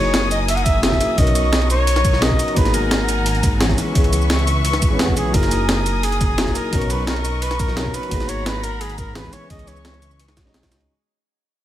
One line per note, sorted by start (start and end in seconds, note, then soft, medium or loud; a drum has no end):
0.00 0.99 F#1 loud
0.00 0.80 F#3 medium
0.00 0.80 A#3 medium
0.00 0.81 D#4 medium
0.00 0.82 E4 medium
0.00 0.82 G#4 loud
0.00 1.16 A#4 medium
0.00 0.29 C#5 loud
0.00 1.16 G#5 medium
0.00 1.16 D#6 medium
0.14 snare loud
0.14 closed hi-hat loud
0.14 ride medium
0.31 0.39 D#5 loud
0.31 closed hi-hat medium
0.31 ride medium
0.31 shaker medium
0.48 0.57 E5 loud
0.48 closed hi-hat loud
0.48 ride medium
0.56 0.65 F#5 medium
0.56 closed hi-hat soft
0.63 0.83 E5 loud
0.63 kick loud
0.63 closed hi-hat medium
0.63 ride medium
0.63 shaker medium
0.82 1.13 F#3 medium
0.82 1.15 A#3 medium
0.82 1.16 C#4 medium
0.82 1.16 E4 medium
0.82 1.16 G#4 loud
0.82 1.20 E5 loud
0.82 snare loud
0.82 closed hi-hat loud
0.82 ride medium
0.92 kick medium
0.92 snare medium
1.01 snare soft
1.01 closed hi-hat medium
1.01 ride medium
1.01 shaker medium
1.15 2.38 B1 loud
1.15 2.18 F#3 medium
1.15 2.19 B3 medium
1.15 2.20 C#4 medium
1.15 2.20 D#4 medium
1.15 2.55 A#4 medium
1.15 2.55 D#5 medium
1.15 1.70 D#5 loud
1.15 2.55 C#6 medium
1.15 kick loud
1.15 closed hi-hat medium
1.15 ride medium
1.20 2.21 A#4 loud
1.27 closed hi-hat soft
1.27 ride soft
1.35 closed hi-hat medium
1.35 ride medium
1.35 shaker medium
1.53 snare loud
1.53 closed hi-hat medium
1.53 ride medium
1.62 ride soft
1.70 2.24 C#5 loud
1.70 closed hi-hat medium
1.70 ride medium
1.70 shaker medium
1.87 closed hi-hat loud
1.87 ride medium
1.96 snare medium
1.96 closed hi-hat soft
1.96 ride soft
2.05 kick loud
2.05 closed hi-hat medium
2.05 ride medium
2.05 shaker medium
2.13 snare soft
2.20 2.52 F#3 medium
2.20 2.54 B3 medium
2.20 2.54 C#4 medium
2.20 2.55 D#4 medium
2.20 2.55 A#4 loud
2.20 2.58 D#5 loud
2.20 snare loud
2.20 closed hi-hat medium
2.20 ride medium
2.31 kick medium
2.39 closed hi-hat medium
2.39 ride medium
2.39 shaker medium
2.48 ride soft
2.54 3.42 G#1 loud
2.54 3.57 F#3 medium
2.54 3.58 A#3 medium
2.54 3.59 B3 medium
2.54 2.75 B4 medium
2.54 3.77 F#5 medium
2.54 3.77 G#5 medium
2.54 3.77 A#5 medium
2.54 kick loud
2.54 closed hi-hat medium
2.54 ride medium
2.58 3.59 D#4 medium
2.58 3.60 G#4 loud
2.65 snare medium
2.65 closed hi-hat soft
2.74 3.78 A#4 medium
2.74 closed hi-hat medium
2.74 ride medium
2.74 shaker medium
2.91 snare loud
2.91 closed hi-hat medium
2.91 ride medium
3.09 closed hi-hat medium
3.09 ride medium
3.09 shaker medium
3.26 closed hi-hat medium
3.26 ride medium
3.35 closed hi-hat soft
3.43 3.77 G#1 loud
3.43 kick loud
3.43 closed hi-hat medium
3.43 ride medium
3.43 shaker medium
3.59 3.91 E3 medium
3.59 3.92 G#3 medium
3.59 3.93 B3 medium
3.59 3.94 C#4 medium
3.59 3.94 G#4 loud
3.59 snare loud
3.59 closed hi-hat medium
3.59 ride medium
3.70 kick medium
3.70 snare soft
3.78 5.32 B4 medium
3.78 5.32 E5 medium
3.78 5.33 C#6 medium
3.78 snare soft
3.78 closed hi-hat medium
3.78 ride medium
3.78 shaker medium
3.92 4.63 C#2 loud
3.92 4.87 E3 loud
3.92 4.88 G#3 medium
3.92 4.89 B3 medium
3.92 4.90 C#4 medium
3.92 kick loud
3.92 closed hi-hat medium
3.92 ride medium
3.98 4.90 G#4 loud
4.04 closed hi-hat soft
4.04 ride soft
4.13 closed hi-hat medium
4.13 ride medium
4.13 shaker medium
4.22 shaker soft
4.30 snare loud
4.30 closed hi-hat medium
4.30 ride medium
4.39 ride soft
4.47 closed hi-hat medium
4.47 ride medium
4.47 shaker medium
4.65 4.92 C#2 medium
4.65 closed hi-hat medium
4.65 ride medium
4.73 snare medium
4.73 closed hi-hat soft
4.73 ride soft
4.82 kick loud
4.82 closed hi-hat medium
4.82 ride medium
4.82 shaker medium
4.88 5.15 E2 medium
4.88 5.31 E3 medium
4.88 5.31 G#3 medium
4.88 5.32 B3 medium
4.92 5.33 C#4 medium
4.92 5.33 B4 loud
4.99 5.16 F#4 medium
4.99 snare loud
4.99 closed hi-hat medium
4.99 ride medium
5.08 kick medium
5.17 5.32 B1 medium
5.17 5.36 G#4 medium
5.17 closed hi-hat medium
5.17 ride medium
5.17 shaker medium
5.31 6.54 F#1 loud
5.31 6.35 F#3 medium
5.31 6.35 A#3 medium
5.31 6.36 D#4 medium
5.31 8.09 A#4 medium
5.31 5.68 A#4 medium
5.31 6.71 G#5 medium
5.31 6.71 D#6 medium
5.31 kick loud
5.31 closed hi-hat medium
5.31 ride medium
5.35 6.37 E4 medium
5.35 6.37 G#4 loud
5.43 snare soft
5.43 closed hi-hat soft
5.51 closed hi-hat medium
5.51 ride medium
5.51 shaker medium
5.69 6.05 A#4 medium
5.69 snare loud
5.69 closed hi-hat medium
5.69 ride medium
5.86 closed hi-hat medium
5.86 ride medium
5.86 shaker medium
6.03 6.57 G#4 loud
6.03 closed hi-hat medium
6.03 ride medium
6.12 closed hi-hat soft
6.21 kick loud
6.21 closed hi-hat medium
6.21 ride medium
6.21 shaker medium
6.37 6.68 F#3 medium
6.37 6.70 A#3 medium
6.37 6.71 D#4 medium
6.37 6.71 E4 medium
6.37 6.71 G#4 loud
6.37 snare loud
6.37 closed hi-hat medium
6.37 ride medium
6.47 kick medium
6.47 snare soft
6.55 6.92 A#4 loud
6.55 snare soft
6.55 closed hi-hat medium
6.55 ride medium
6.55 shaker medium
6.70 7.93 B1 loud
6.70 7.73 F#3 loud
6.70 7.74 B3 medium
6.70 7.75 C#4 medium
6.70 8.10 D#5 medium
6.70 8.10 C#6 medium
6.70 kick loud
6.70 closed hi-hat medium
6.70 ride medium
6.74 7.75 D#4 medium
6.74 7.76 A#4 loud
6.81 closed hi-hat soft
6.81 ride soft
6.90 7.07 B4 medium
6.90 closed hi-hat medium
6.90 ride medium
6.90 shaker medium
7.07 7.43 A#4 loud
7.07 snare loud
7.07 closed hi-hat medium
7.07 ride medium
7.16 ride soft
7.25 closed hi-hat medium
7.25 ride medium
7.25 shaker medium
7.42 7.61 B4 loud
7.42 closed hi-hat loud
7.42 ride medium
7.51 snare medium
7.51 closed hi-hat soft
7.51 ride soft
7.59 7.96 A#4 loud
7.59 kick loud
7.59 closed hi-hat medium
7.59 ride medium
7.59 shaker medium
7.68 snare soft
7.75 8.07 F#3 medium
7.75 8.09 B3 medium
7.75 8.09 C#4 medium
7.75 8.10 D#4 medium
7.75 8.10 A#4 medium
7.75 snare loud
7.75 closed hi-hat medium
7.75 ride medium
7.86 kick medium
7.94 8.30 B4 loud
7.94 closed hi-hat medium
7.94 ride medium
7.94 shaker medium
8.03 ride soft
8.09 8.97 G#1 loud
8.09 9.12 F#3 loud
8.09 9.13 A#3 medium
8.09 9.13 B3 medium
8.09 9.32 F#5 medium
8.09 9.32 A#5 medium
8.09 9.32 B5 medium
8.09 kick loud
8.09 closed hi-hat medium
8.09 ride medium
8.13 9.14 D#4 medium
8.13 9.15 G#4 loud
8.20 snare medium
8.20 closed hi-hat soft
8.29 8.48 C#5 loud
8.29 closed hi-hat medium
8.29 ride medium
8.29 shaker medium
8.46 8.65 B4 loud
8.46 snare loud
8.46 closed hi-hat medium
8.46 ride medium
8.63 8.82 A#4 loud
8.63 closed hi-hat medium
8.63 ride medium
8.63 shaker medium
8.81 8.97 G#4 loud
8.81 closed hi-hat medium
8.81 ride medium
8.90 closed hi-hat soft
8.98 9.32 G#1 loud
8.98 9.14 A#4 loud
8.98 kick loud
8.98 closed hi-hat medium
8.98 ride medium
8.98 shaker medium
9.14 9.46 E3 medium
9.14 9.47 G#3 medium
9.14 9.48 B3 medium
9.14 9.48 C#4 medium
9.14 9.49 G#4 loud
9.14 9.34 B4 loud
9.14 snare loud
9.14 closed hi-hat loud
9.14 ride medium
9.24 kick medium
9.24 snare soft
9.33 10.19 B4 medium
9.33 9.50 C#5 loud
9.33 10.19 E5 medium
9.33 10.87 C#6 medium
9.33 snare soft
9.33 closed hi-hat medium
9.33 ride medium
9.33 shaker medium
9.47 10.39 C#2 loud
9.47 10.17 E3 medium
9.47 10.18 G#3 medium
9.47 10.19 B3 medium
9.47 9.69 D#5 loud
9.47 kick loud
9.47 closed hi-hat medium
9.47 ride medium
9.51 10.19 C#4 medium
9.51 10.20 G#4 loud
9.59 closed hi-hat soft
9.59 ride soft
9.67 10.20 C#5 loud
9.67 snare soft
9.67 closed hi-hat medium
9.67 ride medium
9.67 shaker medium
9.76 shaker soft
9.85 snare loud
9.85 closed hi-hat medium
9.85 ride medium
9.94 ride soft
10.02 closed hi-hat medium
10.02 ride medium
10.02 shaker medium
10.11 shaker soft
10.20 10.88 G#4 medium
10.20 10.88 D#5 medium
10.20 closed hi-hat loud
10.20 ride medium
10.28 snare medium
10.28 closed hi-hat soft
10.28 ride soft
10.37 10.73 B1 medium
10.37 kick loud
10.37 snare loud
10.37 closed hi-hat medium
10.37 ride medium
10.37 shaker medium
10.43 10.85 G#3 medium
10.43 10.86 C#4 medium
10.43 10.87 D#4 medium
10.43 snare soft
10.47 10.88 F#4 medium
10.47 10.88 D#5 loud
10.54 snare loud
10.54 closed hi-hat loud
10.54 ride medium
10.63 kick medium
10.63 snare loud
10.63 ride medium
10.72 10.87 C#2 loud
10.72 snare loud
10.72 closed hi-hat medium
10.72 ride medium
10.72 shaker medium
10.81 ride soft